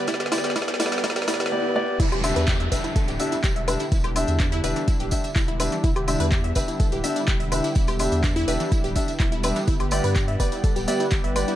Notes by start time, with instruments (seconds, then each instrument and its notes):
Already playing: analog synth pad D3 G3 B3 G4 B4, riser
0.07 grand piano B3 G4 D5, synth pluck E4, kick, snare, closed hi-hat, tambourine
0.14 snare
0.20 synth pluck G4, snare, closed hi-hat
0.26 snare
0.32 grand piano B3 G4 D5, synth pluck E4, snare, open hi-hat, tambourine, high woodblock
0.38 snare
0.44 synth pluck G4, snare, closed hi-hat, tambourine
0.50 snare
0.56 grand piano B3 G4 D5, synth pluck E4, kick, snare, closed hi-hat, tambourine
0.62 snare
0.68 synth pluck G4, snare, closed hi-hat
0.74 snare
0.80 grand piano B3 G4 D5, synth pluck E4, snare, open hi-hat, tambourine
0.86 snare
0.92 synth pluck G4, snare, closed hi-hat, tambourine
0.98 snare
1.04 grand piano B3 G4 D5, synth pluck E4, kick, snare, closed hi-hat, tambourine, swell
1.10 snare
1.16 synth pluck G4, snare, closed hi-hat, tambourine
1.22 snare
1.28 grand piano B3 G4 D5, synth pluck E4, kick, snare, open hi-hat, tambourine
1.34 snare
1.40 synth pluck G4, snare, closed hi-hat, tambourine
1.46 snare
1.52 grand piano B3 G4 D5
1.64 high tom
1.76 grand piano B3 G4 D5, mid tom
1.88 mid tom
2.00 sub bass E1, analog synth pad D3 G3 B3 E4 G4, synth pluck E4, kick, closed hi-hat, tambourine, crash, downlifter
2.12 synth pluck G4, closed hi-hat, high woodblock
2.24 grand piano D4 G4 E5, synth pluck E5, open hi-hat, tambourine, high woodblock
2.36 sub bass E2, synth pluck B4, closed hi-hat, tambourine
2.47 synth pluck G4, kick, clap, closed hi-hat, tambourine
2.60 synth pluck E5, closed hi-hat
2.72 sub bass E1, grand piano D4 G4 E5, synth pluck B4, kick, open hi-hat, tambourine
2.84 synth pluck E4, closed hi-hat, tambourine
2.96 synth pluck A4, kick, closed hi-hat, tambourine
3.08 sub bass D1, synth pluck G4, closed hi-hat, tambourine
3.20 grand piano D4 G4 E5, synth pluck E5, open hi-hat, tambourine
3.32 synth pluck E4, closed hi-hat, tambourine
3.44 sub bass E1, synth pluck G4, kick, clap, closed hi-hat, tambourine
3.56 synth pluck E5, closed hi-hat
3.68 grand piano D4 G4 E5, synth pluck B4, open hi-hat, tambourine, high woodblock
3.80 synth pluck E4, closed hi-hat, tambourine
3.92 sub bass E1, synth pluck E4, kick, closed hi-hat, tambourine
4.04 synth pluck G4, closed hi-hat, high woodblock
4.16 grand piano D4 G4 E5, synth pluck E5, open hi-hat, tambourine, high woodblock
4.27 sub bass E2, synth pluck E5, closed hi-hat, tambourine
4.40 synth pluck D4, kick, clap, closed hi-hat, tambourine
4.52 synth pluck E4, closed hi-hat
4.64 sub bass E1, grand piano D4 G4 E5, synth pluck B4, open hi-hat, tambourine
4.76 synth pluck E3, closed hi-hat, tambourine
4.88 synth pluck E4, kick, closed hi-hat, tambourine
5.00 sub bass D1, synth pluck G4, closed hi-hat, tambourine
5.11 grand piano D4 G4 E5, synth pluck E5, kick, open hi-hat, tambourine
5.24 synth pluck E5, closed hi-hat, tambourine
5.36 sub bass E1, synth pluck E4, kick, clap, open hi-hat, tambourine
5.48 synth pluck E4, closed hi-hat
5.60 grand piano D4 G4 E5, synth pluck B4, open hi-hat, tambourine, high woodblock
5.72 synth pluck E3, closed hi-hat, tambourine
5.84 sub bass E1, synth pluck E4, kick, closed hi-hat, tambourine
5.96 synth pluck G4, closed hi-hat, high woodblock
6.08 grand piano D4 G4 E5, synth pluck E5, open hi-hat, tambourine, high woodblock
6.20 sub bass E2, synth pluck B4, closed hi-hat, tambourine
6.32 synth pluck G4, kick, clap, closed hi-hat, tambourine
6.44 synth pluck E5, closed hi-hat
6.55 sub bass E1, grand piano D4 G4 E5, synth pluck B4, kick, open hi-hat, tambourine
6.68 synth pluck E4, closed hi-hat, tambourine
6.80 synth pluck A4, kick, closed hi-hat, tambourine
6.92 sub bass D1, synth pluck G4, closed hi-hat, tambourine
7.04 grand piano D4 G4 E5, synth pluck E5, open hi-hat, tambourine
7.16 synth pluck E4, closed hi-hat, tambourine
7.28 sub bass E1, synth pluck G4, kick, clap, closed hi-hat, tambourine
7.40 synth pluck E5, closed hi-hat
7.52 grand piano D4 G4 E5, synth pluck B4, open hi-hat, tambourine, high woodblock
7.64 synth pluck E4, closed hi-hat, tambourine
7.75 sub bass E1, synth pluck E4, kick, closed hi-hat, tambourine
7.87 synth pluck G4, closed hi-hat, tambourine, high woodblock
7.99 grand piano D4 G4 E5, synth pluck E5, open hi-hat, tambourine, high woodblock
8.12 sub bass E2, synth pluck E5, closed hi-hat, tambourine
8.24 synth pluck D4, kick, clap, closed hi-hat, tambourine
8.36 synth pluck E4, closed hi-hat
8.48 sub bass E1, grand piano D4 G4 E5, synth pluck B4, open hi-hat, tambourine
8.60 synth pluck E3, closed hi-hat, tambourine
8.72 synth pluck E4, kick, closed hi-hat, tambourine
8.84 sub bass D1, synth pluck G4, closed hi-hat, tambourine
8.96 grand piano D4 G4 E5, synth pluck E5, kick, open hi-hat, tambourine
9.08 synth pluck E5, closed hi-hat, tambourine
9.20 sub bass E1, synth pluck E4, kick, clap, open hi-hat, tambourine
9.32 synth pluck E4, closed hi-hat
9.43 grand piano D4 G4 E5, synth pluck B4, open hi-hat, tambourine, high woodblock
9.56 synth pluck E3, closed hi-hat, tambourine
9.67 sub bass G1, analog synth pad D3 B4, synth pluck E4, kick, closed hi-hat, tambourine
9.80 synth pluck G4, closed hi-hat, high woodblock
9.91 grand piano B3 G4 D5, synth pluck E5, open hi-hat, tambourine, high woodblock
10.04 sub bass G2, synth pluck B4, closed hi-hat, tambourine
10.15 synth pluck G4, kick, clap, closed hi-hat, tambourine
10.28 synth pluck E5, closed hi-hat
10.40 sub bass G1, grand piano B3 G4 D5, synth pluck B4, kick, open hi-hat, tambourine
10.52 synth pluck E4, closed hi-hat, tambourine
10.64 synth pluck A4, kick, closed hi-hat, tambourine
10.76 sub bass D1, synth pluck G4, closed hi-hat, tambourine
10.88 grand piano B3 G4 D5, synth pluck E5, open hi-hat, tambourine
11.00 synth pluck E4, closed hi-hat, tambourine
11.11 sub bass G1, synth pluck G4, kick, clap, closed hi-hat, tambourine
11.24 synth pluck E5, closed hi-hat
11.36 grand piano B3 G4 D5, synth pluck B4, open hi-hat, tambourine, high woodblock
11.48 synth pluck E4, closed hi-hat, tambourine